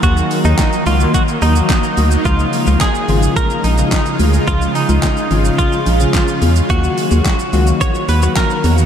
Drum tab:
HH |x-o-x-o-x-o-x-o-|x-o-x-o-x-o-x-o-|x-o-x-o-x-o-x-o-|x-o-x-o-x-o-x-o-|
SH |xxxxxxxxxxxxxxxx|xxxxxxxxxxxxxxxx|xxxxxxxxxxxxxxxx|xxxxxxxxxxxxxxxx|
CP |----x-------x---|----x-------x---|----x-------x---|----x-------x---|
SD |----o-------o---|----o-------o---|----o-------o---|----o-------o---|
BD |o---o---o---o---|o---o---o---o---|o---o---o---o---|o---o---o---o---|